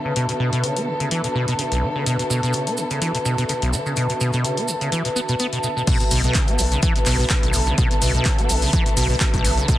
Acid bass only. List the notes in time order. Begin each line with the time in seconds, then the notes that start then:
0.05 C#3
0.16 B2
0.29 B2
0.40 B2
0.53 B2
0.64 C#3
0.77 B3
0.87 D3
1.00 C#3
1.11 E3
1.24 B2
1.35 B2
1.48 B2
1.59 C#3
1.72 B1
1.83 D3
1.96 C#3
2.06 B2
2.30 B2
2.43 B2
2.54 C#3
2.67 B3
2.78 D3
2.91 C#3
3.02 E3
3.15 B2
3.25 B2
3.38 B2
3.49 C#3
3.62 B1
3.73 D3
3.86 C#3
3.97 B2
4.21 B2
4.34 B2
4.45 C#3
4.57 B3
4.68 D3
4.81 C#3
4.92 E3
5.05 B2
5.16 B3
5.29 B2
5.40 B3
5.53 B2
5.64 B2
5.76 B2
5.87 B2
6.00 B2
6.11 B2
6.24 B2
6.35 C#3
6.48 B3
6.59 D3
6.72 C#3
6.83 E3
6.96 B2
7.06 B2
7.19 B2
7.30 C#3
7.43 B1
7.54 D3
7.67 C#3
7.78 B2
7.91 B2
8.02 B2
8.15 B2
8.26 C#3
8.38 B3
8.49 D3
8.62 C#3
8.73 E3
8.86 B2
8.97 B2
9.10 B2
9.21 C#3
9.34 B1
9.44 D3
9.57 C#3
9.68 B2